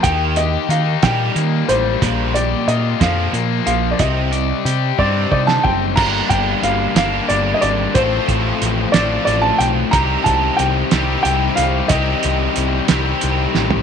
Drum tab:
CC |------------|------------|------------|x-----------|
HH |x-x-x-x-x-x-|x-x-x-x-x-x-|x-x-x-------|--x-x-x-x-x-|
SD |------o-----|------o-----|---------o--|------o-----|
FT |------------|------------|------------|------------|
BD |o-----o-----|o-----o-----|o-----o-o-o-|o-o---------|

CC |------------|------------|------------|
HH |x-x-x-x-x-x-|x-x-x-x-x-x-|x-x-x-x-x---|
SD |------o-----|------o-----|------o---o-|
FT |------------|------------|-----------o|
BD |o-o---------|o-o---------|o-----------|